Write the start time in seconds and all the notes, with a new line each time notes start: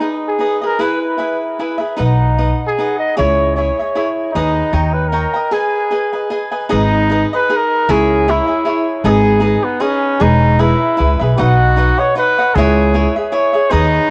Already playing: D#4
0.00 D#4 G#4 B4 D#5
0.28 G#4
0.39 D#4 G#4 B4 D#5
0.62 G#4 A#4 B4 D#5
0.79 E4 G#4 B4 E5
1.02 B4
1.18 E4 G#4 B4 E5
1.59 E4 G#4 B4 E5
1.78 G#4 B4 E5
1.96 B1 D#4 B4 D#5 F#5
2.04 D#4
2.38 D#4 B4 D#5 F#5
2.67 G#4
2.78 D#4 B4 D#5 F#5
2.99 D#5
3.17 C#2 E4 G#4 C#5 E5
3.55 E4 G#4 C#5 E5
3.79 G#4 C#5 E5
3.95 E4 G#4 C#5 E5
4.33 D#2 D#4 G#4 B4 D#5
4.73 D#2 C#5 D#5 G5 A#5
4.94 B4
5.08 A#4 D#5
5.13 C#5 G5 A#5
5.34 D#5 G5 A#5
5.51 G#4 B4 D#5 G#5
5.91 G#4 B4 D#5 G#5
6.13 B4 D#5 G#5
6.30 G#4 B4 D#5 G#5
6.51 B4 D#5 G#5
6.69 G#1 D#4 G#4 B4 D#5
6.75 D#4
7.10 D#4 G#4 B4 D#5
7.33 G#4 B4 D#5
7.49 D#4 G#4 D#5
7.56 A#4
7.89 C#2 E4 G#4 C#5 E5
8.28 E4 G#4 C#5 E5
8.47 G#4 C#5 E5
8.65 E4 G#4 C#5 E5
9.04 G#1 D#4 G#4 B4 D#5
9.40 D#4 G#4 B4 D#5
9.64 B3
9.80 C#4 D#4 G#4 B4 D#5
10.20 E1 D#4 G#4 B4
10.59 E4 G#4 B4 E5
10.97 C#2 E4 G#4 B4 E5
11.19 B1 G#4 B4 E5
11.38 B1 D#4 F#4 B4 D#5 F#5
11.76 D#4 B4 D#5 F#5
11.98 B4 C#5 D#5 F#5
12.15 D#4 B4 D#5 F#5
12.39 B4 D#5 F#5
12.55 C#2 E4 G#4 C#5 E5
12.94 E4 G#4 C#5 E5
13.16 G#4 C#5 E5
13.32 E4 G#4 C#5 E5
13.53 G#4 C#5 E5
13.71 D#2 D#4 G#4 B4 D#5